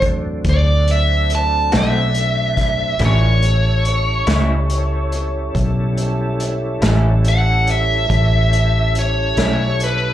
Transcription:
Already playing: fingered electric bass E2, tonewheel organ F#3 A3 C4 D4
0.02 kick, closed hi-hat
0.45 fingered electric bass D2, kick, closed hi-hat
0.49 lead electric guitar D5
0.88 lead electric guitar E5, closed hi-hat
1.30 closed hi-hat
1.35 lead electric guitar A5
1.72 fingered electric bass B1, clean electric guitar D3 A3 C4 F#4, snare, closed hi-hat
1.78 lead electric guitar E5
2.15 closed hi-hat
2.57 kick, snare, closed hi-hat
2.99 fingered electric bass A1, clean electric guitar A2 G3 C#4 E4, tonewheel organ G#3 D4 F4 A#4, kick, closed hi-hat
3.05 lead electric guitar C#5
3.42 tonewheel organ G3 C#4 E4 A4, closed hi-hat
3.85 closed hi-hat
4.27 fingered electric bass C#2, clean electric guitar A2 G3 C#4 E4, snare, closed hi-hat
4.70 closed hi-hat
5.12 closed hi-hat
5.55 fingered electric bass B1, kick, closed hi-hat
5.98 closed hi-hat
6.40 closed hi-hat
6.82 fingered electric bass A1, clean electric guitar A2 G3 C#4 E4, snare, closed hi-hat
7.25 lead electric guitar F#5, closed hi-hat
7.67 lead electric guitar E5, closed hi-hat
8.09 fingered electric bass A1, tonewheel organ G3 C#4 E4 A4, kick, closed hi-hat
8.53 closed hi-hat
8.95 lead electric guitar C#5, closed hi-hat
9.37 fingered electric bass B1, clean electric guitar A2 G3 C#4 E4, snare, closed hi-hat
9.80 lead electric guitar B4, closed hi-hat

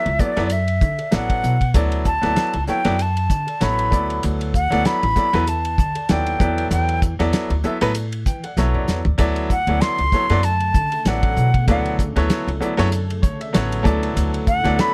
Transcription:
Already playing: flute E5
0.06 upright bass C#2, ride
0.19 grand piano F#3 B3 E4 A4 D5, flute D5, muted upright bass stroke, kick, hi-hat pedal
0.36 upright bass F#2, grand piano F#3 B3 E4 A4 D5, snare, ride
0.50 grand piano A4 D5, flute E5, hi-hat pedal, ride
0.68 ride
0.81 upright bass D3, kick, hi-hat pedal
0.98 grand piano A4 D5, ride
1.11 upright bass A1, grand piano F#3 B3 E4 A4 D5, flute F#5, snare, hi-hat pedal, ride
1.30 kick, ride
1.44 upright bass B2, hi-hat pedal
1.61 kick, ride
1.74 upright bass D2, grand piano F#3 B3 E4 A4 D5, kick, hi-hat pedal, ride
1.92 ride
2.05 flute A5, kick, hi-hat pedal
2.22 upright bass D2, grand piano F#3 B3 E4 A4 D5, snare, ride
2.36 snare, hi-hat pedal, ride
2.53 upright bass C#2, ride
2.67 grand piano F#3 B3 E4 A4 C#5, flute G5, muted upright bass stroke, snare, hi-hat pedal
2.85 upright bass F#2, grand piano F#3 B3 E4 A4 D5, snare, ride
2.99 grand piano E5, flute A5, hi-hat pedal, ride
3.17 ride
3.30 upright bass D3, kick, hi-hat pedal
3.47 grand piano A4 D5, ride
3.60 upright bass A1, grand piano F#3 B3 E4 A4 C#5, flute B5, snare, hi-hat pedal, ride
3.79 ride
3.90 upright bass D2, grand piano F#3 B3 E4 A4 D5, kick, hi-hat pedal
4.10 ride
4.23 upright bass D2, hi-hat pedal, ride
4.41 ride
4.54 flute F#5, kick, hi-hat pedal
4.70 upright bass D2, grand piano F#3 B3 E4 A4 D5, snare, ride
4.85 flute B5, snare, hi-hat pedal, ride
5.03 upright bass A1, ride
5.16 grand piano F#3 B3 E4 A4 D5, muted upright bass stroke, kick, snare, hi-hat pedal
5.33 upright bass E2, grand piano F#3 B3 E4 A4 B4, snare, ride
5.47 grand piano A4 E5, flute A5, hi-hat pedal, ride
5.65 ride
5.78 upright bass D3, kick, hi-hat pedal
5.95 grand piano A4 D5, ride
6.09 upright bass D#2, grand piano F#3 B3 E4 A4 D5, flute G5, snare, hi-hat pedal, ride
6.26 ride
6.40 upright bass E2, grand piano F#3 B3 E4 A4 D5, kick, hi-hat pedal
6.58 ride
6.71 upright bass E2, flute G5, hi-hat pedal, ride
6.89 ride
7.02 kick, hi-hat pedal
7.19 upright bass E2, grand piano F#3 B3 E4 A4 D5, snare, ride
7.33 snare, hi-hat pedal, ride
7.50 upright bass D2, ride
7.64 grand piano F#3 B3 E4 A4 E5, muted upright bass stroke, hi-hat pedal
7.81 upright bass A2, grand piano F#3 B3 E4 A4 B4, ride
7.95 grand piano A4, hi-hat pedal, ride
8.12 ride
8.26 upright bass E3, grand piano G5, kick, hi-hat pedal
8.44 grand piano A4 D5 F#5, ride
8.57 upright bass B1, grand piano F#3 B3 E4 A4 C#5 E5, snare, hi-hat pedal
8.74 upright bass F#2, grand piano D5
8.88 upright bass E2, snare, hi-hat pedal
9.05 upright bass D2, floor tom
9.18 upright bass D2, analog synth pad C#3 D3 A3 A4, grand piano F#3 B3 E4 A4 D5, kick, hi-hat pedal, ride
9.36 ride
9.50 flute F#5, kick, hi-hat pedal
9.67 upright bass D2, grand piano F#3 B3 E4 A4 D5, ride
9.81 flute C6, snare, hi-hat pedal, ride
9.98 upright bass C#2, ride
10.12 grand piano F#3 B3 E4 A4 C#5, muted upright bass stroke, kick, snare, hi-hat pedal
10.29 upright bass F#2, grand piano F#3 B3 E4 A4 D5, snare, ride
10.43 flute A5, hi-hat pedal, ride
10.60 ride
10.74 upright bass D3, kick, hi-hat pedal
10.92 grand piano A4 E5, ride
11.05 upright bass A1, grand piano F#3 B3 E4 A4 D5, flute F#5, snare, hi-hat pedal, ride
11.23 kick, ride
11.37 upright bass B2, hi-hat pedal
11.54 kick, ride
11.68 upright bass D2, grand piano F#3 B3 E4 A4 D5, flute F#5, kick, hi-hat pedal, ride
11.85 ride
11.99 kick, hi-hat pedal
12.16 upright bass D2, grand piano F#3 B3 E4 A4 C#5, snare, ride
12.30 snare, hi-hat pedal, ride
12.47 upright bass C#2, ride
12.60 grand piano F#3 B3 E4 A4 D5, muted upright bass stroke, hi-hat pedal
12.77 upright bass F#2, grand piano F#3 B3 E4 A4 C#5, snare, ride
12.90 grand piano A4 D5, hi-hat pedal, ride
13.10 ride
13.22 upright bass D3, grand piano C#5, kick, hi-hat pedal
13.40 grand piano A4 D5 E5, ride
13.53 upright bass A1, grand piano F#3 B3 E4 A4 C#5 F#5, snare, hi-hat pedal, ride
13.72 ride
13.83 upright bass D2, grand piano F#3 B3 E4 A4 D5 A5, analog synth pad E4, kick, hi-hat pedal
14.03 ride
14.16 upright bass D2, hi-hat pedal, ride
14.34 ride
14.47 flute F#5, kick, hi-hat pedal
14.64 upright bass D2, grand piano F#3 B3 E4 A4 D5, snare, ride
14.79 flute B5, snare, hi-hat pedal, ride

